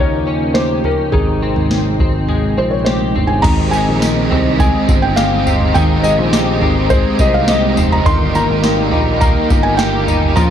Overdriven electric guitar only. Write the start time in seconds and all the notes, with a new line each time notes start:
3.43 G#3 C4 D#4 G4
3.72 C4 D#4 G4
4.01 G#3 C4 D#4 G4
4.30 C4 D#4 G4
4.58 G#3 C4 D#4 G4
4.88 C4 D#4 G4
5.17 G#3 C4 D#4 G4
5.46 C4 D#4 G4
5.75 G#3 C4 D#4 G4
6.04 C4 D#4 G4
6.32 G#3 C4 D#4 G4
6.61 C4 D#4 G4
6.89 G#3 C4 D#4 G4
7.19 C4 D#4 G4
7.47 G#3 C4 D#4 G4
7.76 C4 D#4 G4
8.05 G2 D#3 G3 A#3 D#4 G4
8.34 G3 A#3 D#4 G4
8.62 G2 D#3 G3 A#3 D#4 G4
8.92 G3 A#3 D#4 G4
9.21 G3 A#3 D#4 G4
9.49 G3 A#3 D#4 G4
9.78 G2 D#3 G3 A#3 D#4 G4
10.07 G3 A#3 D#4 G4
10.35 A#2 F3 A#3 C#4 F4 A#4